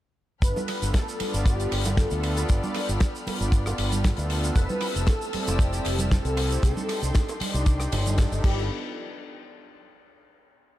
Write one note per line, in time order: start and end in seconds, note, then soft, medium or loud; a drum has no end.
0.42 0.51 G1 loud
0.42 0.58 B3 medium
0.42 0.58 D4 medium
0.42 0.58 F4 medium
0.42 8.40 A4 medium
0.42 0.58 A4 medium
0.42 0.91 B4 loud
0.42 4.52 G5 medium
0.42 4.52 B5 medium
0.42 6.59 F6 medium
0.42 kick loud
0.42 closed hi-hat loud
0.42 tambourine soft
0.42 shaker medium
0.56 tambourine soft
0.56 high bongo medium
0.56 high conga medium
0.56 shaker soft
0.68 cross-stick medium
0.68 open hi-hat loud
0.68 ride medium
0.68 tambourine medium
0.81 0.90 G1 medium
0.81 0.90 B3 medium
0.81 0.91 D4 medium
0.81 0.91 F4 medium
0.81 0.91 A4 loud
0.81 closed hi-hat medium
0.81 tambourine soft
0.81 shaker medium
0.94 1.42 A4 loud
0.94 kick loud
0.94 snare loud
0.94 closed hi-hat loud
0.94 tambourine soft
0.94 high bongo medium
0.94 shaker medium
1.08 tambourine soft
1.08 shaker medium
1.19 1.56 B3 medium
1.19 1.56 D4 medium
1.19 1.56 F4 medium
1.19 1.56 D5 loud
1.19 muted fingered electric bass stroke soft
1.19 open hi-hat loud
1.19 ride medium
1.19 tambourine medium
1.19 high conga medium
1.34 1.65 G1 medium
1.34 closed hi-hat medium
1.34 tambourine soft
1.34 shaker medium
1.46 1.94 G4 loud
1.46 kick loud
1.46 closed hi-hat medium
1.46 tambourine soft
1.46 high bongo soft
1.46 shaker medium
1.59 1.68 B3 medium
1.59 1.68 D4 medium
1.59 1.69 F4 medium
1.59 1.69 A4 loud
1.59 closed hi-hat medium
1.59 tambourine soft
1.59 shaker medium
1.72 2.04 G1 medium
1.72 cross-stick medium
1.72 open hi-hat loud
1.72 ride medium
1.72 tambourine medium
1.85 closed hi-hat medium
1.85 tambourine soft
1.85 high bongo medium
1.85 high conga loud
1.85 shaker medium
1.97 2.20 B3 medium
1.97 2.20 D4 medium
1.97 2.21 F4 medium
1.97 2.45 A4 loud
1.97 2.21 A4 medium
1.97 kick loud
1.97 snare loud
1.97 closed hi-hat medium
1.97 tambourine soft
1.97 shaker medium
2.10 2.43 D2 loud
2.10 closed hi-hat medium
2.10 tambourine soft
2.10 shaker medium
2.23 2.46 B3 medium
2.23 2.46 D4 medium
2.23 2.47 F4 medium
2.23 2.47 A4 loud
2.23 open hi-hat loud
2.23 ride medium
2.23 tambourine medium
2.37 closed hi-hat medium
2.37 tambourine soft
2.37 high bongo medium
2.37 shaker medium
2.49 2.59 G1 loud
2.49 2.65 B3 medium
2.49 2.65 D4 medium
2.49 2.65 F4 medium
2.49 2.65 A4 medium
2.49 3.23 D5 loud
2.49 kick loud
2.49 closed hi-hat medium
2.49 tambourine soft
2.49 shaker medium
2.63 tambourine soft
2.63 high conga loud
2.63 shaker soft
2.74 cross-stick medium
2.74 open hi-hat loud
2.74 ride medium
2.74 tambourine medium
2.74 high bongo medium
2.89 2.97 G1 medium
2.89 2.98 B3 medium
2.89 2.98 D4 medium
2.89 2.98 F4 medium
2.89 2.98 A4 loud
2.89 closed hi-hat medium
2.89 tambourine soft
2.89 shaker medium
3.00 kick loud
3.00 snare loud
3.00 closed hi-hat medium
3.00 tambourine soft
3.00 shaker medium
3.15 tambourine soft
3.15 shaker soft
3.26 3.63 B3 medium
3.26 3.63 D4 medium
3.26 3.63 F4 medium
3.26 3.63 D5 loud
3.26 muted fingered electric bass stroke soft
3.26 open hi-hat loud
3.26 ride medium
3.26 tambourine medium
3.26 high bongo medium
3.26 high conga medium
3.40 3.72 G1 medium
3.40 closed hi-hat medium
3.40 tambourine soft
3.40 shaker medium
3.52 kick loud
3.52 closed hi-hat medium
3.52 tambourine soft
3.52 shaker medium
3.66 3.75 B3 medium
3.66 3.75 D4 medium
3.66 3.75 F4 medium
3.66 3.76 A4 loud
3.66 cross-stick medium
3.66 closed hi-hat medium
3.66 tambourine soft
3.66 high bongo medium
3.66 shaker medium
3.78 4.11 G1 medium
3.78 open hi-hat loud
3.78 ride medium
3.78 tambourine medium
3.92 closed hi-hat medium
3.92 tambourine soft
3.92 high conga medium
3.92 shaker medium
4.04 4.27 B3 medium
4.04 4.27 D4 medium
4.04 4.28 F4 medium
4.04 4.28 A4 medium
4.04 kick loud
4.04 snare loud
4.04 closed hi-hat medium
4.04 tambourine soft
4.04 shaker medium
4.16 4.50 D2 loud
4.16 closed hi-hat medium
4.16 tambourine soft
4.16 high bongo soft
4.16 shaker soft
4.30 4.53 B3 medium
4.30 4.53 D4 medium
4.30 4.53 F4 medium
4.30 4.54 A4 loud
4.30 open hi-hat loud
4.30 ride medium
4.30 tambourine loud
4.44 closed hi-hat medium
4.44 tambourine soft
4.44 shaker medium
4.56 4.65 F1 loud
4.56 4.72 C4 medium
4.56 4.72 E4 medium
4.56 4.72 G4 medium
4.56 4.72 A4 loud
4.56 5.04 B4 loud
4.56 6.61 A5 medium
4.56 6.61 E6 medium
4.56 kick loud
4.56 closed hi-hat medium
4.56 tambourine medium
4.56 high bongo medium
4.56 shaker medium
4.69 tambourine soft
4.69 high conga medium
4.69 shaker soft
4.81 cross-stick medium
4.81 open hi-hat loud
4.81 ride medium
4.81 tambourine medium
4.95 5.04 F1 medium
4.95 5.04 C4 medium
4.95 5.05 E4 medium
4.95 5.05 G4 medium
4.95 5.05 A4 medium
4.95 closed hi-hat soft
4.95 tambourine soft
4.95 shaker medium
5.07 5.56 A4 loud
5.07 kick loud
5.07 snare loud
5.07 closed hi-hat medium
5.07 tambourine medium
5.07 high bongo medium
5.07 shaker medium
5.22 tambourine soft
5.22 shaker medium
5.33 5.70 C4 medium
5.33 5.70 E4 medium
5.33 5.70 G4 medium
5.33 5.70 D5 loud
5.33 muted fingered electric bass stroke soft
5.33 open hi-hat loud
5.33 ride medium
5.33 tambourine medium
5.33 high conga medium
5.47 5.79 F1 medium
5.47 closed hi-hat medium
5.47 tambourine soft
5.47 high bongo medium
5.47 shaker medium
5.59 6.12 G4 loud
5.59 kick loud
5.59 closed hi-hat medium
5.59 tambourine medium
5.59 shaker medium
5.73 5.82 C4 loud
5.73 5.82 E4 medium
5.73 5.82 G4 medium
5.73 5.82 A4 loud
5.73 closed hi-hat medium
5.73 tambourine soft
5.73 shaker medium
5.85 6.18 F1 medium
5.85 cross-stick medium
5.85 open hi-hat loud
5.85 ride medium
5.85 tambourine medium
5.98 closed hi-hat medium
5.98 tambourine soft
5.98 high bongo soft
5.98 high conga medium
5.98 shaker medium
6.10 6.34 C4 medium
6.10 6.34 E4 medium
6.10 6.34 G4 medium
6.10 6.62 A4 loud
6.10 6.34 A4 medium
6.10 kick loud
6.10 snare loud
6.10 closed hi-hat medium
6.10 tambourine medium
6.10 shaker medium
6.25 6.56 C2 loud
6.25 closed hi-hat medium
6.25 tambourine soft
6.25 shaker soft
6.36 6.60 C4 loud
6.36 6.60 E4 medium
6.36 6.60 G4 medium
6.36 6.60 A4 loud
6.36 open hi-hat loud
6.36 ride medium
6.36 tambourine medium
6.36 high bongo medium
6.51 closed hi-hat medium
6.51 tambourine soft
6.51 shaker medium
6.62 6.72 C2 loud
6.62 6.78 D4 medium
6.62 6.78 D#4 medium
6.62 6.79 G4 medium
6.62 7.36 A4 loud
6.62 6.79 A4 loud
6.62 8.42 G5 medium
6.62 8.42 C6 medium
6.62 kick loud
6.62 closed hi-hat medium
6.62 tambourine soft
6.62 shaker medium
6.77 tambourine soft
6.77 high conga loud
6.77 shaker medium
6.89 cross-stick medium
6.89 open hi-hat loud
6.89 ride medium
6.89 tambourine medium
6.89 high bongo medium
7.01 7.11 C2 medium
7.01 7.11 D4 medium
7.01 7.11 D#4 medium
7.01 7.11 G4 medium
7.01 7.12 A4 loud
7.01 closed hi-hat soft
7.01 tambourine soft
7.01 shaker medium
7.15 kick loud
7.15 snare loud
7.15 closed hi-hat medium
7.15 tambourine medium
7.15 shaker medium
7.29 closed hi-hat soft
7.29 tambourine soft
7.29 high bongo medium
7.29 shaker soft
7.40 7.77 D4 medium
7.40 7.77 D#4 medium
7.40 7.77 G4 medium
7.40 7.77 D5 loud
7.40 muted fingered electric bass stroke soft
7.40 open hi-hat loud
7.40 ride medium
7.40 tambourine loud
7.40 high conga medium
7.54 7.86 C2 medium
7.54 closed hi-hat soft
7.54 tambourine soft
7.54 shaker medium
7.66 kick loud
7.66 closed hi-hat medium
7.66 tambourine medium
7.66 shaker medium
7.79 7.89 D4 medium
7.79 7.89 D#4 medium
7.79 7.89 G4 medium
7.79 7.89 A4 loud
7.79 cross-stick medium
7.79 closed hi-hat medium
7.79 tambourine soft
7.79 high bongo soft
7.79 shaker medium
7.92 8.25 G1 loud
7.92 open hi-hat loud
7.92 ride loud
7.92 tambourine loud
7.92 low conga medium
8.05 8.15 D4 medium
8.05 8.15 D#4 medium
8.05 8.15 G4 medium
8.05 8.16 A4 loud
8.05 closed hi-hat medium
8.05 tambourine soft
8.05 high conga loud
8.05 shaker medium
8.17 8.41 D4 loud
8.17 8.41 D#4 medium
8.17 8.41 G4 loud
8.17 8.41 A4 loud
8.17 kick loud
8.17 snare loud
8.17 closed hi-hat medium
8.17 tambourine medium
8.17 high bongo medium
8.17 shaker medium
8.32 8.43 G1 medium
8.32 closed hi-hat medium
8.32 tambourine soft
8.32 shaker soft
8.42 8.68 G1 loud
8.42 8.63 B3 medium
8.42 8.63 D4 medium
8.42 8.64 F4 medium
8.42 8.68 G4 medium
8.42 8.69 G4 medium
8.42 8.64 A4 medium
8.42 8.68 F5 medium
8.42 8.69 A5 medium
8.42 8.68 B5 medium
8.42 kick loud
8.42 crash loud
8.42 tambourine medium
8.59 tambourine soft